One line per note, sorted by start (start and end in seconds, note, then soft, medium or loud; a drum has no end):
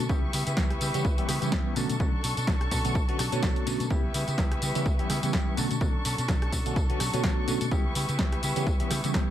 0.00 0.09 C#4 soft
0.00 1.72 C#6 medium
0.09 0.27 C#2 loud
0.09 0.21 E3 medium
0.09 0.31 G3 medium
0.09 0.21 G3 medium
0.09 0.21 B3 medium
0.09 0.32 B3 loud
0.09 0.21 C#4 medium
0.09 0.33 E4 medium
0.09 0.21 G4 medium
0.09 0.34 G4 loud
0.09 1.75 B4 medium
0.09 1.75 E5 medium
0.09 kick loud
0.09 tambourine soft
0.33 0.43 C#3 medium
0.33 0.46 G3 medium
0.33 0.47 B3 medium
0.33 0.46 E4 medium
0.33 0.45 G4 medium
0.33 open hi-hat loud
0.33 tambourine medium
0.46 0.54 C#3 loud
0.46 0.56 B3 medium
0.46 0.57 E4 medium
0.46 0.57 G4 medium
0.46 closed hi-hat medium
0.46 tambourine soft
0.57 0.74 C#2 medium
0.57 0.79 G3 medium
0.57 0.80 B3 medium
0.57 kick loud
0.57 snare loud
0.57 tambourine soft
0.70 cross-stick medium
0.70 closed hi-hat soft
0.80 0.90 C#3 loud
0.80 1.18 G3 medium
0.80 1.18 B3 medium
0.80 1.18 E4 medium
0.80 1.16 G4 medium
0.80 open hi-hat loud
0.80 tambourine medium
0.94 1.02 C#3 medium
0.94 1.03 E3 loud
0.94 1.03 G3 medium
0.94 1.03 B3 medium
0.94 1.03 C#4 medium
0.94 1.04 G4 loud
0.94 closed hi-hat medium
0.94 tambourine soft
1.05 1.17 C#2 loud
1.05 kick loud
1.05 tambourine soft
1.17 1.27 E3 loud
1.17 1.27 G3 medium
1.17 1.27 B3 medium
1.17 1.28 B3 medium
1.17 1.27 C#4 medium
1.17 1.28 E4 medium
1.17 1.28 G4 medium
1.17 1.27 G4 loud
1.17 muted fingered electric bass stroke soft
1.17 closed hi-hat medium
1.28 1.38 C#3 loud
1.28 1.42 G3 medium
1.28 1.42 B3 medium
1.28 1.41 E4 medium
1.28 1.40 G4 medium
1.28 cross-stick medium
1.28 open hi-hat loud
1.28 tambourine medium
1.41 1.49 C#3 medium
1.41 1.74 E3 medium
1.41 1.74 G3 medium
1.41 1.74 B3 medium
1.41 1.51 B3 medium
1.41 1.74 C#4 medium
1.41 1.52 E4 medium
1.41 1.52 G4 medium
1.41 1.74 G4 loud
1.41 closed hi-hat medium
1.41 tambourine soft
1.52 1.62 C#2 medium
1.52 1.75 G3 medium
1.52 1.76 B3 medium
1.52 1.77 G4 loud
1.52 kick loud
1.52 snare loud
1.76 1.85 B2 loud
1.76 1.93 D3 medium
1.76 1.98 F#3 medium
1.76 1.93 A3 medium
1.76 1.93 B3 medium
1.76 1.93 C#4 medium
1.76 1.99 C#4 medium
1.76 1.99 D4 medium
1.76 1.94 F#4 loud
1.76 3.88 A4 medium
1.76 2.00 A4 medium
1.76 3.88 C#6 medium
1.76 open hi-hat loud
1.76 tambourine medium
1.89 1.97 B2 medium
1.89 closed hi-hat medium
1.89 tambourine soft
1.99 2.13 B1 loud
1.99 2.11 D3 medium
1.99 2.22 F#3 loud
1.99 2.11 A3 medium
1.99 2.11 B3 medium
1.99 2.23 C#4 loud
1.99 2.12 C#4 medium
1.99 2.24 D4 loud
1.99 2.12 F#4 medium
1.99 2.24 A4 loud
1.99 kick loud
1.99 tambourine soft
2.13 muted fingered electric bass stroke soft
2.23 2.33 B2 medium
2.23 2.37 F#3 medium
2.23 2.37 C#4 medium
2.23 2.37 D4 medium
2.23 2.35 A4 medium
2.23 open hi-hat loud
2.23 tambourine medium
2.37 2.44 B2 loud
2.37 2.47 C#4 medium
2.37 2.47 D4 medium
2.37 2.47 A4 medium
2.37 closed hi-hat medium
2.37 tambourine soft
2.47 2.65 B1 medium
2.47 2.70 F#3 medium
2.47 2.70 C#4 medium
2.47 2.71 D4 medium
2.47 2.72 A4 loud
2.47 kick loud
2.47 snare loud
2.61 cross-stick medium
2.61 closed hi-hat soft
2.71 2.81 B2 loud
2.71 3.08 F#3 medium
2.71 3.09 C#4 medium
2.71 3.08 D4 medium
2.71 3.07 A4 medium
2.71 kick medium
2.71 open hi-hat loud
2.71 tambourine medium
2.84 2.92 B2 medium
2.84 2.94 D3 loud
2.84 2.94 A3 medium
2.84 2.94 B3 medium
2.84 2.94 C#4 medium
2.84 2.94 F#4 loud
2.84 closed hi-hat medium
2.84 tambourine soft
2.95 3.04 B1 medium
2.95 kick loud
2.95 tambourine soft
3.08 3.17 D3 medium
3.08 3.17 A3 medium
3.08 3.18 B3 medium
3.08 3.18 C#4 medium
3.08 3.19 D4 medium
3.08 3.18 F#4 loud
3.08 3.19 A4 medium
3.08 muted fingered electric bass stroke soft
3.08 closed hi-hat medium
3.19 3.28 B2 loud
3.19 3.32 F#3 medium
3.19 3.33 C#4 medium
3.19 3.32 D4 medium
3.19 3.31 A4 medium
3.19 cross-stick medium
3.19 open hi-hat loud
3.19 tambourine medium
3.32 3.40 B2 medium
3.32 3.64 D3 medium
3.32 3.64 A3 medium
3.32 3.64 B3 medium
3.32 3.42 C#4 medium
3.32 3.43 D4 medium
3.32 3.64 F#4 loud
3.32 3.43 A4 medium
3.32 3.64 C#5 medium
3.32 closed hi-hat medium
3.32 tambourine soft
3.43 3.52 B1 medium
3.43 3.65 F#3 medium
3.43 3.66 C#4 medium
3.43 3.67 D4 medium
3.43 3.67 A4 loud
3.43 kick loud
3.43 snare loud
3.43 tambourine soft
3.56 closed hi-hat soft
3.66 3.76 B2 medium
3.66 3.84 D3 medium
3.66 3.90 F#3 medium
3.66 3.84 A3 medium
3.66 3.84 B3 medium
3.66 3.84 C#4 medium
3.66 3.90 C#4 medium
3.66 3.91 D4 medium
3.66 3.84 F#4 loud
3.66 3.91 A4 medium
3.66 open hi-hat loud
3.66 tambourine medium
3.80 3.87 B2 loud
3.80 closed hi-hat medium
3.80 tambourine soft
3.90 4.08 C#2 loud
3.90 4.02 E3 medium
3.90 4.13 G3 medium
3.90 4.02 G3 medium
3.90 4.02 B3 medium
3.90 4.13 B3 loud
3.90 4.02 C#4 medium
3.90 4.14 E4 loud
3.90 4.02 G4 medium
3.90 4.15 G4 medium
3.90 5.56 B4 medium
3.90 5.56 E5 medium
3.90 9.30 C#6 medium
3.90 kick loud
3.90 tambourine soft
4.14 4.23 C#3 medium
4.14 4.27 G3 medium
4.14 4.28 B3 medium
4.14 4.27 E4 medium
4.14 4.26 G4 medium
4.14 open hi-hat loud
4.14 tambourine medium
4.27 4.35 C#3 loud
4.27 4.37 B3 medium
4.27 4.38 E4 medium
4.27 4.38 G4 medium
4.27 closed hi-hat medium
4.27 tambourine soft
4.38 4.55 C#2 medium
4.38 4.60 G3 medium
4.38 4.61 B3 medium
4.38 4.62 E4 loud
4.38 4.63 G4 medium
4.38 kick loud
4.38 snare loud
4.38 tambourine soft
4.52 cross-stick medium
4.52 closed hi-hat soft
4.61 4.71 C#3 loud
4.61 4.99 G3 medium
4.61 4.99 B3 medium
4.61 4.99 E4 medium
4.61 4.97 G4 medium
4.61 open hi-hat loud
4.61 tambourine medium
4.75 4.83 C#3 medium
4.75 4.84 E3 loud
4.75 4.84 G3 medium
4.75 4.84 B3 medium
4.75 4.84 C#4 medium
4.75 4.85 G4 loud
4.75 closed hi-hat medium
4.75 tambourine soft
4.86 4.99 C#2 medium
4.86 kick loud
4.86 tambourine soft
4.99 5.08 E3 medium
4.99 5.08 G3 medium
4.99 5.08 B3 medium
4.99 5.09 B3 soft
4.99 5.08 C#4 medium
4.99 5.10 E4 medium
4.99 5.09 G4 medium
4.99 5.08 G4 loud
4.99 muted fingered electric bass stroke soft
4.99 closed hi-hat medium
5.09 5.19 C#3 loud
5.09 5.23 G3 medium
5.09 5.23 B3 medium
5.09 5.23 E4 medium
5.09 5.21 G4 medium
5.09 cross-stick medium
5.09 open hi-hat loud
5.09 tambourine medium
5.22 5.30 C#3 loud
5.22 5.55 E3 medium
5.22 5.55 G3 medium
5.22 5.55 B3 medium
5.22 5.33 B3 medium
5.22 5.55 C#4 medium
5.22 5.33 E4 medium
5.22 5.33 G4 medium
5.22 5.55 G4 medium
5.22 closed hi-hat medium
5.22 tambourine soft
5.33 5.43 C#2 medium
5.33 5.56 G3 medium
5.33 5.57 B3 medium
5.33 5.58 E4 medium
5.33 5.58 G4 loud
5.33 kick loud
5.33 snare loud
5.57 5.66 B2 loud
5.57 5.74 D3 medium
5.57 5.70 F#3 medium
5.57 5.74 A3 medium
5.57 5.74 B3 medium
5.57 5.71 C#4 medium
5.57 5.75 C#4 medium
5.57 5.70 D4 medium
5.57 5.75 F#4 loud
5.57 7.69 A4 medium
5.57 5.69 A4 medium
5.57 open hi-hat medium
5.57 tambourine medium
5.70 5.78 B2 medium
5.70 5.80 C#4 soft
5.70 5.81 D4 medium
5.70 5.81 A4 medium
5.70 closed hi-hat medium
5.70 tambourine soft
5.81 5.94 B1 loud
5.81 5.92 D3 medium
5.81 6.03 F#3 medium
5.81 5.93 A3 medium
5.81 5.93 B3 medium
5.81 6.04 C#4 medium
5.81 5.93 C#4 medium
5.81 6.05 D4 loud
5.81 5.93 F#4 medium
5.81 6.05 A4 loud
5.81 kick loud
5.81 tambourine soft
5.95 muted fingered electric bass stroke soft
6.04 6.14 B2 medium
6.04 6.18 F#3 medium
6.04 6.18 C#4 medium
6.04 6.18 D4 medium
6.04 6.16 A4 medium
6.04 open hi-hat loud
6.04 tambourine medium
6.17 6.25 B2 loud
6.17 6.28 C#4 medium
6.17 6.28 D4 medium
6.17 6.28 A4 medium
6.17 closed hi-hat medium
6.17 tambourine soft
6.28 6.46 B1 medium
6.28 6.50 F#3 medium
6.28 6.51 C#4 medium
6.28 6.52 D4 loud
6.28 6.53 A4 loud
6.28 kick loud
6.28 snare loud
6.28 tambourine soft
6.42 cross-stick medium
6.42 closed hi-hat soft
6.52 6.62 B2 loud
6.52 6.89 F#3 medium
6.52 6.90 C#4 medium
6.52 6.89 D4 medium
6.52 6.88 A4 medium
6.52 kick medium
6.52 open hi-hat medium
6.52 tambourine medium
6.66 6.73 B2 medium
6.66 6.75 D3 loud
6.66 6.75 A3 medium
6.66 6.75 B3 medium
6.66 6.75 C#4 medium
6.66 6.75 F#4 loud
6.66 closed hi-hat medium
6.66 tambourine soft
6.76 6.89 B1 medium
6.76 kick loud
6.76 tambourine soft
6.89 6.98 D3 loud
6.89 6.99 A3 medium
6.89 6.99 B3 medium
6.89 6.99 C#4 medium
6.89 6.99 C#4 soft
6.89 7.00 D4 medium
6.89 6.99 F#4 loud
6.89 7.00 A4 medium
6.89 muted fingered electric bass stroke soft
6.89 closed hi-hat medium
7.00 7.09 B2 loud
7.00 7.13 F#3 medium
7.00 7.14 C#4 medium
7.00 7.13 D4 medium
7.00 7.12 A4 medium
7.00 cross-stick medium
7.00 open hi-hat loud
7.00 tambourine medium
7.13 7.21 B2 medium
7.13 7.45 D3 medium
7.13 7.45 A3 medium
7.13 7.45 B3 medium
7.13 7.23 C#4 medium
7.13 7.23 D4 medium
7.13 7.45 F#4 medium
7.13 7.24 A4 medium
7.13 7.45 C#5 medium
7.13 closed hi-hat medium
7.13 tambourine soft
7.24 7.33 B1 medium
7.24 7.46 F#3 medium
7.24 7.47 C#4 medium
7.24 7.48 D4 loud
7.24 7.48 A4 loud
7.24 kick loud
7.24 snare loud
7.24 tambourine soft
7.47 7.57 B2 loud
7.47 7.65 D3 medium
7.47 7.61 F#3 medium
7.47 7.65 A3 medium
7.47 7.65 B3 medium
7.47 7.61 C#4 medium
7.47 7.65 C#4 medium
7.47 7.61 D4 medium
7.47 7.65 F#4 loud
7.47 7.59 A4 medium
7.47 open hi-hat medium
7.47 tambourine medium
7.60 7.68 B2 medium
7.60 7.71 C#4 soft
7.60 7.72 D4 medium
7.60 7.71 A4 medium
7.60 closed hi-hat medium
7.60 tambourine soft
7.71 7.89 C#2 loud
7.71 7.83 E3 medium
7.71 7.94 G3 loud
7.71 7.83 G3 medium
7.71 7.83 B3 medium
7.71 7.94 B3 loud
7.71 7.83 C#4 medium
7.71 7.95 E4 loud
7.71 7.83 G4 medium
7.71 7.96 G4 loud
7.71 9.30 B4 medium
7.71 9.30 E5 medium
7.71 kick loud
7.71 tambourine soft
7.95 8.04 C#3 medium
7.95 8.08 G3 medium
7.95 8.09 B3 medium
7.95 8.08 E4 medium
7.95 8.07 G4 medium
7.95 open hi-hat loud
7.95 tambourine medium
8.08 8.16 C#3 loud
8.08 8.18 B3 medium
8.08 8.19 E4 medium
8.08 8.19 G4 medium
8.08 closed hi-hat medium
8.08 tambourine soft
8.19 8.36 C#2 medium
8.19 8.41 G3 medium
8.19 8.42 B3 loud
8.19 8.43 E4 loud
8.19 8.44 G4 medium
8.19 kick loud
8.19 snare loud
8.19 tambourine soft
8.32 cross-stick medium
8.32 closed hi-hat medium
8.42 8.52 C#3 loud
8.42 8.80 G3 medium
8.42 8.80 B3 medium
8.42 8.80 E4 medium
8.42 8.78 G4 medium
8.42 open hi-hat medium
8.42 tambourine medium
8.56 8.63 C#3 medium
8.56 8.65 E3 loud
8.56 8.65 G3 medium
8.56 8.65 B3 medium
8.56 8.65 C#4 medium
8.56 8.66 G4 loud
8.56 closed hi-hat medium
8.56 tambourine soft
8.67 8.80 C#2 loud
8.67 kick loud
8.67 tambourine soft
8.79 8.89 E3 loud
8.79 8.89 G3 medium
8.79 8.89 B3 medium
8.79 8.90 B3 medium
8.79 8.89 C#4 medium
8.79 8.91 E4 medium
8.79 8.90 G4 medium
8.79 8.89 G4 loud
8.79 muted fingered electric bass stroke soft
8.79 closed hi-hat medium
8.90 9.00 C#3 loud
8.90 9.04 G3 medium
8.90 9.04 B3 medium
8.90 9.03 E4 medium
8.90 9.02 G4 medium
8.90 cross-stick medium
8.90 open hi-hat loud
8.90 tambourine medium
9.03 9.11 C#3 medium
9.03 9.30 E3 medium
9.03 9.30 G3 medium
9.03 9.30 B3 medium
9.03 9.13 B3 medium
9.03 9.30 C#4 medium
9.03 9.14 E4 medium
9.03 9.14 G4 medium
9.03 9.30 G4 loud
9.03 closed hi-hat medium
9.03 tambourine medium
9.14 9.23 C#2 medium
9.14 9.30 G3 medium
9.14 9.30 B3 medium
9.14 9.30 E4 medium
9.14 9.30 G4 loud
9.14 kick loud
9.14 snare loud
9.14 tambourine soft